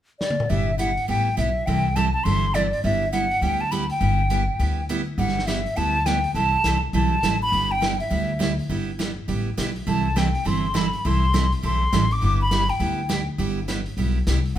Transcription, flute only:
0.19 D5
0.49 E5
0.79 F#5
1.09 G5
1.38 E5
1.66 G5
1.96 A5
2.14 A5
2.24 C6
2.54 D5
2.84 E5
3.12 F#5
3.42 G5
3.61 A5
3.71 B5
3.91 G5
5.18 F#5
5.47 E5
5.77 A5
6.06 G5
6.35 A5
6.94 A5
7.42 B5
7.71 G5
8.00 E5
9.88 A5
10.18 G5
10.47 C6
10.77 B5
10.99 B5
11.06 C6
11.66 C6
12.13 D6
12.42 B5
12.70 G5

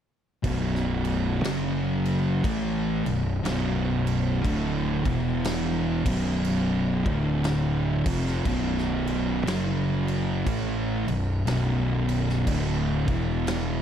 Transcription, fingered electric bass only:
0.44 B0
1.44 F#1
2.44 A1
3.06 B0
3.44 B0
4.45 D1
5.05 E1
6.06 B0
7.06 D1
8.06 F1
8.45 B0
9.46 F#1
10.47 A1
11.08 B0
11.47 B0
12.47 D1
13.08 E1

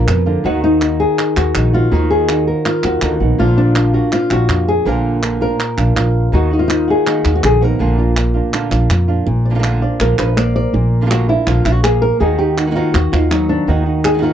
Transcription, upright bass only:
0.08 F2
0.45 D#2
1.36 D#2
1.55 A#1
1.92 D#2
2.84 D#2
3.02 D2
3.20 A#1
3.39 A#1
4.30 A#1
4.49 F2
4.86 A#1
5.78 A#1
5.96 A#1
6.33 D#2
7.25 D#2
7.43 A#1
7.80 A#1
8.71 A#1
8.90 F2
9.27 A#1
10.00 A#1
10.18 A#1
10.73 A#1
11.47 A#1
11.65 A#1
12.21 D#2
12.94 D#2
13.13 D#2
13.68 D#2

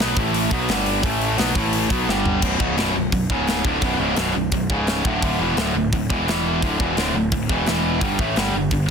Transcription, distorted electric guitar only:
0.01 B2 F#3 B3
0.17 A2 E3 A3
0.51 B2 F#3 B3
0.69 G2 D3 G3
1.03 A2 E3 A3
1.38 B2 F#3 B3
1.55 A2 E3 A3
1.90 B2 F#3 B3
2.09 G2 D3 G3
2.43 B1 F#2 B2
2.59 C#2 G#2 C#3
2.76 B1 F#2 B2
2.95 B1 F#2
3.12 B1 F#2
3.30 C#2 G#2 C#3
3.65 D2 A2 D3
3.82 B1 F#2 B2
4.00 C#2 G#2 C#3
4.17 B1 F#2 B2
4.35 B1 F#2
4.53 B1 F#2
4.70 C#2 G#2 C#3
5.05 D2 A2 D3
5.23 D2 A2 D3
5.40 E2 B2 E3
5.57 D2 A2 D3
5.74 D2 A2
5.93 D2 A2
6.10 E2 B2 E3
6.27 E2 B2 E3
6.63 D2 A2 D3
6.79 E2 B2 E3
6.97 D2 A2 D3
7.15 D2 A2
7.32 D2 A2
7.49 E2 B2 E3
7.67 E2 B2 E3
8.01 G2 D3 G3
8.19 A2 E3 A3
8.37 G2 D3 G3
8.55 G2 D3
8.72 G2 D3

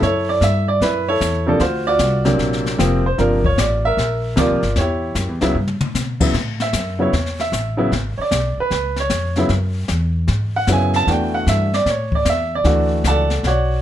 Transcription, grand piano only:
0.03 E4 A4 C#5
0.29 D5
0.44 E5
0.68 D5
0.82 E4 B4
1.08 E4 A4 C#5
1.46 C3 F3 A#3 D4 A4
1.61 F4 F#4 C5
1.87 F4 F#4 D5
2.25 C3 F#3 A#3 D4
2.78 C3 F3 A#3 C4
3.06 C5
3.18 C3 F3 A#3 D4 F4 A#4
3.46 C#5
3.59 D5
3.85 A#4 E5
4.36 C3 F3 A#3 F4 D5
4.40 F4 A#4
4.78 E4 G4 C#5
5.41 C#3 F#3 B3 E4
6.20 C#3 F#3 B3 E4
6.62 E5
6.99 C#3 F#3 B3 E4 C#5
7.41 E5
7.77 C#3 F#3 B3 E4
8.18 C#5 D5
8.60 B4
9.00 C#5
9.37 C#3 F#3 B3 E4
10.56 F#5
10.68 C#3 F#3 B3 E4
10.73 G#5
10.96 A5
11.08 E3 A3 D4 F#4 G5
11.34 F#5
11.49 E5
11.74 D5
11.89 C#5
12.15 D5
12.30 E5
12.55 D5
12.65 E3 A3 D4 F#4
13.07 A4 D5 F#5 A5
13.47 F#4 C#5 D5 F#5

